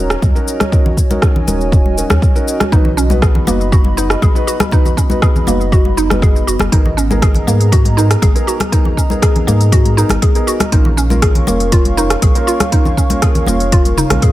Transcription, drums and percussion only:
0.10 cross-stick, shaker
0.22 kick, high conga, shaker
0.36 shaker
0.48 shaker
0.60 cross-stick, high conga, shaker
0.72 kick, shaker
0.86 low conga
0.97 kick, shaker
1.11 high conga, shaker
1.22 kick, cross-stick, shaker
1.36 low conga
1.48 high conga, shaker
1.61 shaker
1.72 kick, shaker
1.86 high conga
1.98 shaker
2.10 cross-stick, high conga, shaker
2.22 kick, shaker
2.36 shaker
2.48 shaker
2.60 cross-stick, high conga, shaker
2.72 kick, low conga, shaker
2.85 low conga
2.98 shaker
3.10 high conga, shaker
3.22 kick, cross-stick, shaker
3.35 low conga
3.47 high conga, shaker
3.61 shaker
3.72 kick, shaker
3.85 high conga
3.98 shaker
4.10 cross-stick, shaker
4.22 kick, high conga, shaker
4.36 shaker
4.48 shaker
4.60 cross-stick, high conga, shaker
4.71 kick, low conga, shaker
4.85 low conga, shaker
4.97 kick, shaker
5.10 high conga, shaker
5.22 kick, cross-stick, shaker
5.36 low conga, shaker
5.47 high conga, shaker
5.61 shaker
5.72 kick, shaker
5.85 high conga
5.98 shaker
6.10 cross-stick, high conga, shaker
6.22 kick, shaker
6.36 shaker
6.48 shaker
6.59 cross-stick, high conga, shaker
6.72 kick, closed hi-hat, low conga, shaker
6.86 low conga
6.98 shaker
7.11 high conga, shaker
7.22 kick, cross-stick, closed hi-hat, shaker
7.35 closed hi-hat, low conga
7.48 high conga, shaker
7.61 closed hi-hat, shaker
7.72 kick, closed hi-hat, shaker
7.85 closed hi-hat, high conga
7.98 shaker
8.11 cross-stick, closed hi-hat, shaker
8.22 kick, closed hi-hat, high conga, shaker
8.36 closed hi-hat, shaker
8.48 shaker
8.60 cross-stick, closed hi-hat, high conga, shaker
8.72 kick, closed hi-hat, shaker
8.85 low conga
8.97 kick, shaker
9.10 high conga, shaker
9.22 kick, cross-stick, closed hi-hat, shaker
9.36 closed hi-hat, low conga
9.48 high conga, shaker
9.61 closed hi-hat, shaker
9.72 kick, closed hi-hat, shaker
9.86 closed hi-hat, high conga
9.98 shaker
10.09 cross-stick, closed hi-hat, high conga, shaker
10.22 kick, closed hi-hat, shaker
10.35 closed hi-hat, shaker
10.48 shaker
10.60 cross-stick, closed hi-hat, high conga, shaker
10.72 kick, closed hi-hat, low conga, shaker
10.85 low conga
10.98 shaker
11.10 high conga, shaker
11.22 kick, cross-stick, closed hi-hat, shaker
11.35 closed hi-hat, low conga
11.47 high conga, shaker
11.60 closed hi-hat, shaker
11.72 kick, closed hi-hat, shaker
11.85 closed hi-hat, high conga
11.98 shaker
12.10 cross-stick, closed hi-hat, shaker
12.22 kick, closed hi-hat, high conga, shaker
12.35 closed hi-hat, shaker
12.48 shaker
12.60 cross-stick, closed hi-hat, high conga, shaker
12.72 kick, closed hi-hat, shaker
12.85 low conga, shaker
12.97 kick, shaker
13.10 closed hi-hat, high conga, shaker
13.22 kick, cross-stick, closed hi-hat, shaker
13.35 closed hi-hat, low conga, shaker
13.46 high conga, shaker
13.60 closed hi-hat, shaker
13.72 kick, closed hi-hat, shaker
13.85 closed hi-hat, high conga, shaker
13.97 high tom, shaker
14.10 cross-stick, closed hi-hat, high tom, high conga, shaker
14.22 kick, closed hi-hat, mid tom, shaker

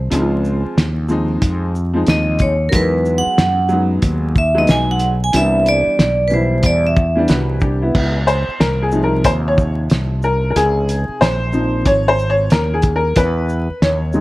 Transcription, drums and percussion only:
0.12 closed hi-hat
0.45 shaker
0.78 snare, closed hi-hat
1.09 shaker
1.42 kick, closed hi-hat
1.75 shaker
2.07 snare, closed hi-hat
2.39 kick, closed hi-hat, shaker
2.72 kick, closed hi-hat
3.05 shaker
3.38 snare, closed hi-hat
3.69 shaker
4.02 kick, closed hi-hat
4.36 kick, shaker
4.67 snare, closed hi-hat
4.99 closed hi-hat, shaker
5.33 closed hi-hat
5.66 closed hi-hat, shaker
5.99 snare, closed hi-hat
6.30 shaker
6.63 kick, closed hi-hat
6.96 kick, shaker
7.28 snare, closed hi-hat
7.61 kick, shaker
7.95 kick, crash
8.28 closed hi-hat, shaker
8.60 snare, closed hi-hat
8.91 shaker
9.24 kick, closed hi-hat
9.58 kick, shaker
9.90 snare, closed hi-hat
10.22 shaker
10.56 closed hi-hat
10.89 closed hi-hat, shaker
11.22 snare, closed hi-hat
11.53 shaker
11.85 kick, closed hi-hat
12.19 shaker
12.50 snare, closed hi-hat
12.82 kick, closed hi-hat, shaker
13.16 kick, closed hi-hat
13.49 shaker
13.82 snare, closed hi-hat
14.13 shaker

